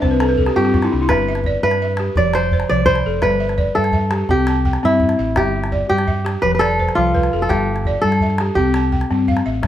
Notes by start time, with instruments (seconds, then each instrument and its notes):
Already playing: kora D4 E4
0.02 fingered electric bass C2, balafon C4 C5, calabash thump
0.11 balafon B4
0.20 balafon A4, calabash click
0.29 balafon B4
0.38 balafon A4, calabash thump
0.46 balafon G4, calabash click
0.56 fingered electric bass G2, balafon C4 F4, kora G4
0.65 balafon G4, calabash click
0.74 balafon F4, calabash thump, calabash click
0.82 balafon E4, calabash click
0.92 fingered electric bass C2, balafon D4
1.02 balafon E4
1.09 fingered electric bass G1, balafon G3, kora B4, calabash thump, calabash click
1.18 calabash click
1.28 balafon E5
1.35 calabash click
1.44 balafon D5, calabash thump
1.63 fingered electric bass G2, balafon G3, kora B4
1.71 calabash click
1.82 balafon E5
1.97 balafon G4, calabash click
2.16 fingered electric bass F1, balafon F3, kora D5, calabash thump
2.34 kora C5, balafon D5, calabash click
2.51 balafon C5, calabash thump
2.60 calabash click
2.69 fingered electric bass C2, balafon F3, kora D5
2.86 kora C5, balafon B5, calabash thump
2.95 calabash click
3.06 fingered electric bass F1, balafon A4
3.22 fingered electric bass G1, balafon G3, kora B4, calabash thump, calabash click
3.31 calabash click
3.40 balafon E5
3.49 calabash click
3.58 balafon D5, calabash thump
3.75 fingered electric bass G2, balafon G3, kora A4
3.84 calabash click
3.92 balafon E5, calabash thump
4.11 balafon G4, calabash click
4.29 fingered electric bass C2, balafon C4, kora G4, calabash thump
4.47 balafon A5, calabash click
4.65 balafon G5, calabash thump
4.73 calabash click
4.83 fingered electric bass G2, balafon C4, kora E4
5.00 calabash thump
5.09 calabash click
5.19 fingered electric bass A1, balafon E5
5.36 fingered electric bass G1, balafon G3, kora G4, calabash thump, calabash click
5.64 calabash click
5.72 balafon D5, calabash thump
5.89 fingered electric bass G2, balafon G3, kora G4
5.98 calabash click
6.07 balafon E5, calabash thump
6.25 balafon G4, calabash click
6.42 fingered electric bass F1, balafon F3, kora B4, calabash thump
6.55 kora B4
6.59 kora A4, balafon D5, calabash click
6.79 balafon C5, calabash thump
6.89 calabash click
6.95 fingered electric bass C2, balafon F3, kora F4
7.14 balafon B4, calabash thump
7.23 calabash click
7.33 fingered electric bass F1, balafon A4
7.42 kora A4
7.49 fingered electric bass G1, balafon G3, kora G4, calabash thump, calabash click
7.76 calabash click
7.85 balafon D5, calabash thump
8.02 fingered electric bass G2, balafon G3, kora A4, calabash click
8.12 calabash click
8.20 balafon E5, calabash thump
8.30 calabash click
8.38 balafon G4, calabash click
8.55 fingered electric bass C2, balafon C4, kora G4, calabash thump
8.74 balafon A5, calabash click
8.92 balafon G5, calabash thump, calabash click
9.01 calabash click
9.10 fingered electric bass G2, balafon C4
9.28 balafon F5, calabash thump
9.37 calabash click
9.46 fingered electric bass A1, balafon E5
9.63 fingered electric bass G1, balafon G3, calabash thump, calabash click